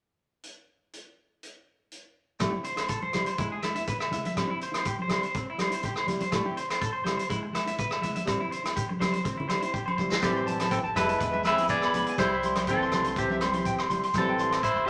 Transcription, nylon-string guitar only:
2.39 G3 C4 E4
2.51 E4
2.76 C4 E4
3.13 G3 C4 E4
3.38 G#3 B3 E4
3.62 G#3 E4
3.75 B3 E4
4.10 G#3 B3 E4
4.35 G3 C4 E4
4.46 C4 E4
4.71 C4 E4
5.08 G3 C4 E4
5.58 G3 C4 E4
5.70 C4 E4
6.06 G3 C4 E4
6.31 G3 C4 E4
6.45 C4 E4
6.69 C4, muted nylon-string guitar stroke
7.04 G3 C4 E4
7.29 G#3 B3 E4
7.52 G#3 B3 E4
7.66 B3 E4
8.01 G#3 B3 E4
8.25 G3 C4 E4
8.37 C4 E4
8.64 C4 E4
8.99 G3 C4 E4
9.48 G3 C4 E4
9.62 C4 E4
9.98 G3 C4 E4
10.22 G3 C4 E4
10.46 G3 C4 E4
10.95 G3 C4
11.08 C4 E4
11.20 G#3 B3 E4
11.43 G#3 B3 E4
11.58 B3 E4
11.94 G#3 B3 E4
12.17 G3 C4 E4
12.43 G3 C4
12.92 G3 C4 E4
13.06 C4 E4
13.42 G3 C4 E4
13.54 C4 E4
13.90 G3 C4 E4
14.15 G3 C4 E4
14.40 G3 C4 E4

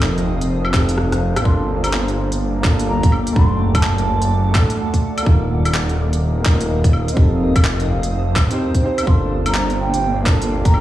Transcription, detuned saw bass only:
Already playing: F1
0.41 F1
0.74 F1
1.36 A1
1.45 G1
2.32 G1
3.36 F#1
4.22 F#1
4.55 A1
5.26 D#1
6.13 D#1
7.17 F1
8.04 F1
8.36 A1
9.07 G1
9.93 G1

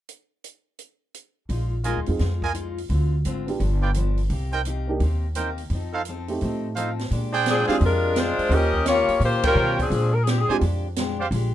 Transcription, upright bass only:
1.49 A#1
1.96 D#2
2.08 F2
2.20 F2
2.90 D2
3.25 G#1
3.60 G1
4.30 C2
5.00 D#2
5.70 F2
6.42 A2
7.11 A#2
7.68 muted upright bass stroke
7.81 F2
8.38 muted upright bass stroke
8.49 D#2
9.08 muted upright bass stroke
9.20 A#2
9.55 B2
9.90 A#2
10.49 muted upright bass stroke
10.61 F2
11.31 A#1

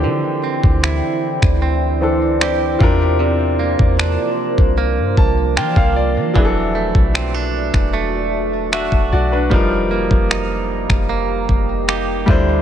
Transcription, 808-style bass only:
0.05 D3
0.64 D2
1.43 D2
2.81 E2
3.80 E2
4.58 C2
4.98 G2
5.18 C2
5.57 E3
5.76 C2
6.16 E3
6.36 E1
6.95 B1
7.74 E1
8.92 E1
9.13 B1
9.52 F1
10.11 F1
10.90 F1
11.49 F1
12.28 D2

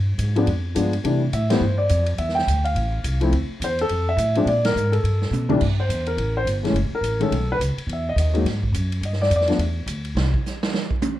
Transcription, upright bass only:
Already playing: G2
0.18 G#2
0.47 F2
0.76 G2
1.04 C3
1.33 A2
1.61 G2
1.90 F2
2.18 E2
2.47 D2
2.75 A1
3.04 C2
3.32 D2
3.49 muted upright bass stroke
3.60 E2
3.90 F2
4.17 A2
4.45 A#2
4.75 G#2
5.03 G2
5.31 B2
5.61 G2
5.89 E2
6.17 A1
6.45 G1
6.73 F#1
6.89 muted upright bass stroke
7.01 A1
7.31 B1
7.59 C#2
7.77 muted upright bass stroke
7.87 E2
8.16 D#2
8.44 G#2
8.72 F#2
9.01 G2
9.30 F2
9.58 E2
9.86 D2
10.15 C2

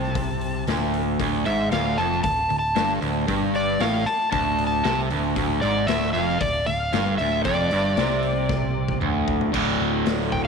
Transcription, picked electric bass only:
Already playing: C2
0.67 D1
1.20 D1
1.46 G#1
1.71 D1
1.98 F1
2.24 D1
2.49 D1
2.76 G1
3.02 D1
3.29 G1
3.80 A1
4.07 muted picked electric bass stroke
4.33 D1
4.85 C2
5.11 D1
5.36 D1
5.63 G#1
5.88 D1
6.15 F1
6.41 D1
6.67 D1
6.93 G1
7.19 D1
7.45 F1
7.72 G1
7.97 C2
9.02 D1
9.54 D1
9.79 D1
10.06 D1
10.32 D1

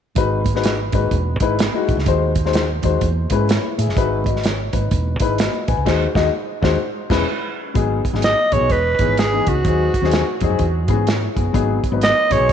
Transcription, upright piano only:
0.16 G#3 D#4 F#4 B4
0.54 G#3 D#4 F#4 B4
0.93 G#3 D#4 F#4 B4
1.40 G#3 D#4 E4 B4
1.73 G#3 D#4 E4 F#4
2.06 G#3 D#4 F#4 C5
2.45 G#3 D#4 F#4 C5
2.83 G#3 D#4 F#4 C5
3.31 G#3 C#4 E4 B4
3.50 E4 C#5
3.78 G#4 E5
3.96 G#3 D#4 F#4 B4
4.26 F#4 D#5
4.45 C#5
4.73 D#4 B4
5.20 G#3 D#4 E4 B4
5.40 F#4
5.68 B4 G#5
5.85 G#3 D#4 F#4 C5
6.14 G#3 D#4 F#4 D#5
6.62 G#3 D#4 F#4 C5
7.09 G#3 C#4 E4 B4
7.74 F#3 B3 D#4 G#4
8.13 F#3 B3 D#4 G#4
8.52 F#3 B3 D#4 G#4
8.99 E3 B3 D#4 G#4
9.32 E3 B3 D#4 G#4
9.66 F#3 C4 D#4 G#4
10.03 F#3 C4 D#4 G#4
10.42 F#3 C4 D#4 G#4
10.88 E3 B3 C#4 G#4
11.07 E4 C#5
11.36 B3 G#4
11.53 F#3 B3 D#4 G#4
11.92 F#3 B3 D#4 B4
12.30 F#3 B3 D#4 G#4

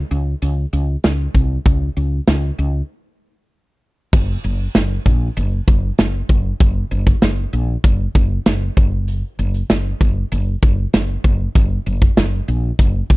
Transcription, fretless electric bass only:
0.11 C#2
0.42 C#2
0.73 C#2
1.04 C#2
1.35 C2
1.66 C#2
1.97 C#2
2.28 C#2
2.59 C#2
4.13 F#1
4.44 F#1
4.75 F#1
5.06 A#1
5.37 F#1
5.68 F#1
5.99 F#1
6.29 F#1
6.60 F#1
6.91 F#1
7.22 F#1
7.53 A#1
7.84 F#1
8.15 F#1
8.46 F#1
8.77 F#1
9.39 F#1
9.70 F#1
10.01 F#1
10.32 F#1
10.63 F#1
10.94 F#1
11.24 F#1
11.55 F#1
11.86 F#1
12.17 F#1
12.48 A#1
12.79 F#1
13.10 F#1

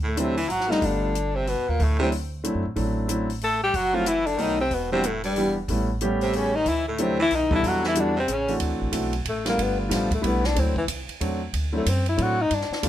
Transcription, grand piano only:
0.16 F#3 A3 C4 D4 E4
0.69 G3 A3 B3 D4 F4
1.99 F#3 A3 C4 D4 E4
2.44 F#3 A3 C4 D4 E4
2.76 F#3 A3 C4 D4 E4
3.08 F#3 A3 C4 D4 E4
3.93 F#3 A3 C4 E4 F#4
4.38 F#3 A3 B3 D#4 A4
4.92 E3 G3 B3 D4 F#4
5.38 E3 G3 B3 D4 G4
5.69 G3 A3 B3 C#4 E4
6.01 G3 A3 B3 C#4 G4
6.99 F#3 A3 C4 D4 E4
7.50 E3 G3 B3 D4 A4
7.94 E3 G3 B3 D4 F#4
8.47 E3 A3 C4 D4 F#4
8.92 E3 A3 C4 D4 F#4
9.45 G3 A3 B3 D4 F4
9.89 G3 A3 B3 D4 F4
10.22 G3 A3 B3 D4 E4
10.54 F#3 A3 C4 D4 E4
11.20 F#3 A3 C4 D4 F#4
11.72 F#3 A3 C4 D4 E4
12.16 F#3 A3 C4 D4 E4
12.83 G3 A3 B3 D4 F4

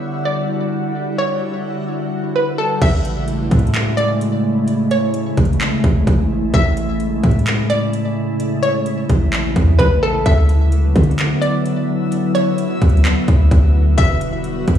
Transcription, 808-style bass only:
2.82 A1
3.51 A2
5.37 A1
5.84 A1
6.07 A1
6.54 A1
7.24 A2
9.10 A1
9.56 E2
9.79 A1
10.26 D2
10.96 D3
12.82 D2
13.28 D2
13.51 D2
13.98 E1
14.68 E2

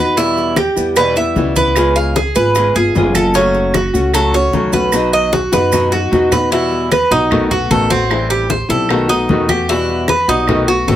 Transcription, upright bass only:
Already playing: E2
0.76 E2
1.36 C#2
2.36 G#1
2.75 G1
2.95 F#1
3.94 C#2
4.53 B1
5.52 F#2
6.12 E2
7.11 B1
7.70 A1
8.69 B1
9.29 E2
10.28 B1
10.88 A1

